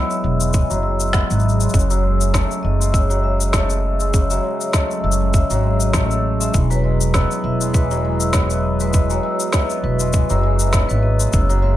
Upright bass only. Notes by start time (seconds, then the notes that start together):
0.24 E1
0.71 F#1
1.31 G#1
1.74 F#1
2.65 F#1
5.04 F#1
5.50 G#1
5.94 A1
6.54 E1
7.44 E1
9.84 E1
10.31 F#1
10.91 G#1
11.33 F#1